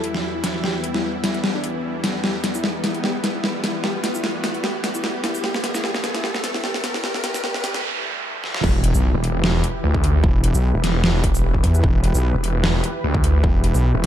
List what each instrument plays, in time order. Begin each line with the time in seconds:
Already playing: supersaw synth E2 E3 G3 E4, riser
0.04 grand piano E4, closed hi-hat
0.14 grand piano E4, snare
0.34 grand piano E4
0.44 grand piano E4, snare, closed hi-hat
0.55 grand piano E4
0.64 grand piano G4, snare
0.74 grand piano B3
0.84 grand piano B3, closed hi-hat
0.94 grand piano E4, snare
1.04 grand piano B3
1.15 grand piano B3
1.24 grand piano E4, snare, closed hi-hat
1.34 grand piano B3, closed hi-hat
1.44 grand piano B3, snare
1.54 grand piano D4
1.64 grand piano B3, closed hi-hat
1.74 grand piano B3
1.94 grand piano B3
2.04 grand piano B3, snare, closed hi-hat
2.14 grand piano B3
2.24 supersaw synth B3, grand piano G4, snare
2.34 grand piano B3
2.44 grand piano B3, snare, closed hi-hat
2.54 grand piano E4, shaker
2.64 grand piano B3, snare
2.75 grand piano B3
2.84 grand piano E4, snare, closed hi-hat
2.94 grand piano B3, closed hi-hat
3.04 grand piano G4, snare
3.15 grand piano B3
3.24 grand piano B3, snare, closed hi-hat
3.35 grand piano E4
3.44 grand piano B3, snare
3.55 grand piano B3
3.64 grand piano E4, snare, closed hi-hat
3.75 grand piano B3
3.84 grand piano G4, snare
3.95 grand piano B3
4.04 grand piano B3, snare, closed hi-hat
4.14 grand piano E4, shaker
4.24 grand piano B3, snare
4.35 grand piano B3
4.44 grand piano E4, snare, closed hi-hat
4.54 grand piano B3, closed hi-hat
4.64 grand piano G4, snare
4.75 grand piano B3
4.84 grand piano B3, snare, closed hi-hat
4.94 grand piano E4, shaker
5.04 grand piano B3, snare
5.15 grand piano B3
5.24 grand piano E4, snare, closed hi-hat
5.34 grand piano B3, shaker
5.44 supersaw synth A3, grand piano G4, snare
5.54 grand piano B3, snare
5.64 grand piano B3, snare, closed hi-hat
5.75 grand piano E4, snare, shaker
5.84 grand piano G4, snare
5.95 grand piano B3, snare
6.04 grand piano B3, snare, closed hi-hat
6.15 grand piano E4, snare, closed hi-hat
6.24 grand piano G4, snare
6.35 grand piano B3, snare
6.44 grand piano B3, snare, closed hi-hat
6.54 grand piano E4, snare
6.64 grand piano G4, snare
6.74 grand piano B3, snare
6.84 grand piano B3, snare, closed hi-hat
6.94 grand piano E4, snare
7.04 grand piano G4, snare, noise sweep
7.14 grand piano B3, snare
7.24 grand piano G4, snare, closed hi-hat
7.34 grand piano B3, snare, shaker
7.44 grand piano G4, snare
7.54 grand piano B3, snare
7.64 grand piano G4, snare, closed hi-hat
7.74 grand piano B3, snare, closed hi-hat
8.44 snare
8.54 snare
8.64 wobble bass E1, supersaw synth E3 E4 G4 B4, kick, crash, impact
8.84 closed hi-hat
8.94 wobble bass B1, shaker
9.14 detuned saw bass E1
9.24 detuned saw bass E1, closed hi-hat
9.44 snare
9.64 closed hi-hat
9.84 detuned saw bass D2
9.94 kick
10.04 closed hi-hat
10.24 wobble bass E1, kick
10.44 closed hi-hat
10.54 wobble bass B1, shaker
10.74 detuned saw bass E1
10.84 detuned saw bass E1, snare, closed hi-hat
11.04 snare
11.24 detuned saw bass E1, kick, closed hi-hat
11.34 shaker
11.54 kick
11.64 wobble bass E2, closed hi-hat
11.74 shaker
11.84 wobble bass E1, kick
12.04 closed hi-hat
12.14 wobble bass B1, shaker
12.34 detuned saw bass E1
12.44 detuned saw bass E1, closed hi-hat
12.64 snare
12.84 closed hi-hat
13.04 detuned saw bass D2
13.14 kick
13.24 closed hi-hat
13.44 wobble bass E1, kick
13.64 closed hi-hat
13.74 wobble bass B1, shaker
13.94 detuned saw bass E1